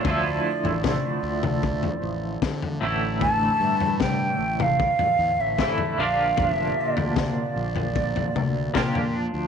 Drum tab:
SD |----o-------o---|----o-------o---|----o-------o---|
T2 |----o--o--------|----o--o--------|----o-----o-o---|
FT |o--o---o-o---o--|o--o---o-o---o--|o--o---o-o---o--|
BD |o---o---o---o---|o---o---o---o---|o---o---o---o---|